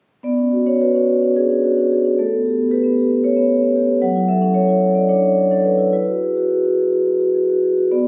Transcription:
0.23 B3 D5
0.38 C#4
0.52 F#4
0.66 C#4 C#5
0.81 F#4 B4
0.95 C#4
1.09 F#4
1.22 C#4
1.36 D4 G#4
1.50 C#4
1.64 F#4
1.77 C#4
1.92 F#4 G#4
2.05 C#4
2.19 A3 A4
2.32 B3
2.46 G4
2.58 B3
2.71 G4 B4
2.84 B3
2.98 G4
3.11 B3
3.24 C#4 C#5
3.37 B3
3.49 G4
3.62 B3
3.76 G4
3.89 B3
4.02 F#3 F#5
4.16 E4
4.28 A4 E5
4.42 C#4
4.54 A4 C#5
4.68 E4
4.82 A4
4.95 C#4 D5
5.09 D4 C#5
5.23 C#4
5.36 A4
5.51 C#4 A4
5.64 A4 B4
5.78 E4
5.93 E4 B4
6.08 F#4
6.22 G#4
6.37 F#4
6.50 G#4
6.65 F#4
6.79 G#4
6.92 F#4
7.07 G#4
7.20 F#4
7.34 G#4
7.50 F#4
7.64 G#4
7.78 F#4
7.91 B3 D5

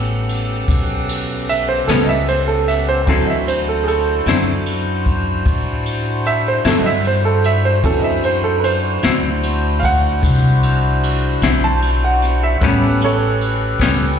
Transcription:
Already playing: A1 C#3 G3 B3 C#4 G4 A4
0.29 ride
0.68 B1, kick, ride
1.09 ride
1.49 E5, ride
1.69 C5
1.88 C#2 A2 G3 B3 C#4 A4, snare, ride
2.04 D#5
2.09 E5
2.28 C5, ride
2.48 A4
2.68 E5, snare, ride
2.89 C5
3.05 D2 D3 E3 F#3 C4 D4 E4 F#4 C5, kick, ride
3.09 F#3 C4 E4 A4
3.25 D#5
3.30 E5
3.48 C5, ride
3.69 A4
3.84 G#4
3.88 A4, ride
4.26 F#2 D3 F#3 C4 E4, snare, ride
4.66 ride
5.06 kick, ride
5.45 A2, kick, ride
5.86 ride
6.25 E5, ride
6.48 C5
6.65 G2 D3 F#3 C4 E4 A4, snare, ride
6.82 D#5
6.86 E5
7.05 C5, ride
7.25 A4
7.44 E5, ride
7.65 C5
7.83 F#2 E3 F#3 C4 D4 E4 F#4 A4 C5, kick, ride
8.00 D#5
8.04 E5
8.24 C5, ride
8.44 A4
8.60 B4, ride
8.64 C5
9.02 D2 D3 F#3 C4 E4, snare, ride
9.43 ride
9.80 F5, kick, ride
9.84 F#5
10.23 C2, kick, ride
10.63 ride
11.03 ride
11.42 B1 D3 F#3 C4 E4, snare, ride
11.64 A5
11.82 ride
12.04 F#5
12.22 snare, ride
12.43 E5
12.60 A1 A2 G3 B3 C#4 G4 A4 B4, kick, ride
12.64 C#4
13.01 A4 C#5, ride
13.41 ride
13.79 C#2 A2 G3 B3 C#4, snare, ride

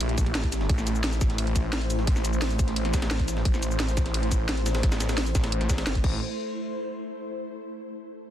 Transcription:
Already playing: A3 E4 G4
0.00 A#1, closed hi-hat, ride
0.09 closed hi-hat
0.18 kick, closed hi-hat, ride, cabasa
0.26 ride
0.35 A1, snare, closed hi-hat, ride
0.44 kick, snare, closed hi-hat
0.52 snare, closed hi-hat, ride, cabasa
0.61 snare
0.69 A1 C5, kick, closed hi-hat, ride
0.78 snare, cabasa
0.87 closed hi-hat, ride, cabasa
0.95 cabasa
1.04 snare, closed hi-hat, ride
1.13 snare, closed hi-hat, cabasa
1.21 kick, snare, closed hi-hat, ride, cabasa
1.30 snare, closed hi-hat
1.38 closed hi-hat, ride
1.47 closed hi-hat
1.56 kick, closed hi-hat, ride, cabasa
1.73 snare, closed hi-hat, ride
1.81 closed hi-hat
1.90 closed hi-hat, ride, cabasa
1.99 snare
2.07 A1, kick, closed hi-hat, ride
2.16 snare, cabasa
2.25 closed hi-hat, ride, cabasa
2.33 cabasa
2.42 snare, closed hi-hat, open hi-hat
2.50 closed hi-hat, cabasa
2.59 kick, closed hi-hat, ride, cabasa
2.68 snare, closed hi-hat
2.76 closed hi-hat, ride
2.85 snare, closed hi-hat
2.94 kick, snare, closed hi-hat, ride, cabasa
3.02 snare, ride
3.11 snare, closed hi-hat, ride
3.19 kick, snare, closed hi-hat
3.28 snare, closed hi-hat, ride, cabasa
3.37 snare
3.45 A1, kick, closed hi-hat, ride
3.54 snare, cabasa
3.63 closed hi-hat, ride, cabasa
3.71 cabasa
3.80 snare, closed hi-hat, ride
3.88 snare, closed hi-hat, cabasa
3.97 kick, snare, closed hi-hat, ride, cabasa
4.06 snare, closed hi-hat
4.14 closed hi-hat, ride
4.23 closed hi-hat
4.32 kick, closed hi-hat, ride, cabasa
4.49 snare, closed hi-hat, ride
4.57 closed hi-hat
4.66 snare, closed hi-hat, ride, cabasa
4.75 snare, ride
4.83 A1, kick, snare, closed hi-hat, ride
4.92 snare, ride, cabasa
5.00 snare, closed hi-hat, ride, cabasa
5.09 snare, ride, cabasa
5.18 snare, closed hi-hat, open hi-hat
5.26 closed hi-hat, cabasa
5.35 A1, kick, snare, closed hi-hat, ride, cabasa
5.44 snare, closed hi-hat, ride
5.52 closed hi-hat
5.61 snare, closed hi-hat
5.69 kick, snare, closed hi-hat, ride, cabasa
5.78 snare, ride
5.87 G1, snare, closed hi-hat, ride
5.95 kick, closed hi-hat
6.04 A1, kick, crash

